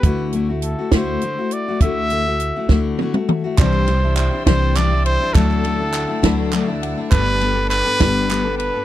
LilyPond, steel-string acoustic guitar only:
\new Staff \with { instrumentName = "Steel-string acoustic guitar" } { \time 6/8 \key d \mixolydian \tempo 4. = 68 <d a e' fis'>8 <d a e' fis'>16 <a e' fis'>8 <a e' fis'>16 <d a e' fis'>8 <d e' fis'>16 <a e' fis'>8 <a e' fis'>16 | <d a e' fis'>8 <d a e' fis'>16 <a e' fis'>8 <a e' fis'>16 <d a e' fis'>8 <d a e' fis'>16 <a e' fis'>8 <a e' fis'>16 | <c e g d' e'>8 <e g d' e'>16 <g d' e'>8 <g d' e'>16 <c e g d' e'>8 <e g d' e'>16 <g d' e'>8 <g d' e'>16 | <d fis a d' e'>8 <fis a d' e'>16 <a d' e'>8 <a d' e'>16 <d fis a d' e'>8 <fis a d' e'>16 <a d' e'>8 <a d' e'>16 |
<g b d' a'>8 <g b d' a'>16 <b d' a'>8 <b d' a'>16 <g b d' a'>8 <g b d' a'>16 <b d' a'>8 <b d' a'>16 | }